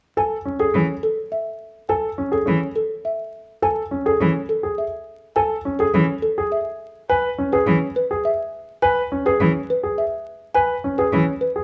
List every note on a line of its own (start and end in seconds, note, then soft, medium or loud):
0.17 0.36 A4 medium
0.17 0.36 G#5 medium
0.45 0.64 C#4 soft
0.59 0.79 G#4 medium
0.59 0.79 A4 medium
0.74 0.85 E3 soft
0.74 0.93 C#4 soft
1.03 1.22 A4 medium
1.32 1.51 E5 medium
1.89 2.09 A4 medium
1.89 2.08 G#5 medium
2.18 2.37 C#4 soft
2.32 2.51 G#4 medium
2.32 2.52 A4 medium
2.46 2.58 E3 soft
2.46 2.66 C#4 soft
2.76 2.95 A4 medium
3.05 3.24 E5 medium
3.62 3.82 A4 medium
3.62 3.82 G#5 medium
3.91 4.10 C#4 soft
4.06 4.25 G#4 medium
4.06 4.25 A4 medium
4.20 4.32 E3 soft
4.20 4.39 C#4 soft
4.49 4.68 A4 medium
4.63 4.83 G#4 soft
4.78 4.97 E5 medium
5.36 5.55 A4 medium
5.36 5.55 G#5 medium
5.65 5.84 C#4 medium
5.79 5.98 G#4 medium
5.79 5.98 A4 medium
5.94 6.05 E3 medium
5.94 6.13 C#4 medium
6.22 6.41 A4 medium
6.38 6.56 G#4 medium
6.52 6.70 E5 medium
7.09 7.28 B4 medium
7.09 7.28 G#5 medium
7.38 7.57 C#4 medium
7.53 7.71 G#4 medium
7.53 7.71 B4 medium
7.67 7.78 E3 medium
7.67 7.86 C#4 medium
7.96 8.15 B4 medium
8.11 8.29 G#4 medium
8.25 8.44 E5 medium
8.82 9.01 B4 medium
8.82 9.01 G#5 medium
9.12 9.30 C#4 medium
9.26 9.45 G#4 medium
9.26 9.44 B4 medium
9.40 9.51 E3 medium
9.40 9.59 C#4 medium
9.70 9.88 B4 medium
9.83 10.02 G#4 soft
9.98 10.17 E5 medium
10.55 10.74 B4 medium
10.55 10.74 G#5 medium
10.84 11.03 C#4 medium
10.98 11.17 G#4 medium
10.98 11.17 B4 medium
11.13 11.24 E3 medium
11.13 11.32 C#4 medium
11.41 11.60 B4 medium
11.56 11.64 G#4 medium